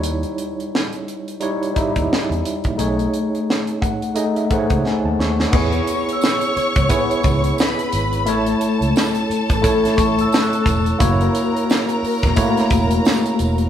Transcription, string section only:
X:1
M:4/4
L:1/8
Q:"Swing 16ths" 1/4=88
K:Bmix
V:1 name="String section"
z8 | z8 | [K:A] [cc']6 [Bb]2 | [Aa]8 |
[^A^a]8 |]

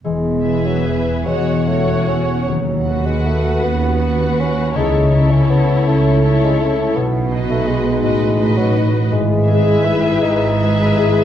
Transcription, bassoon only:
X:1
M:6/8
L:1/16
Q:3/8=54
K:E
V:1 name="Bassoon"
G,3 F, E,2 G,2 A,2 C2 | F,3 G, A,2 B,4 C2 | D3 C B,2 A,3 G, A,2 | B,3 A, G,4- G, F, z2 |
G,4 E2 D6 |]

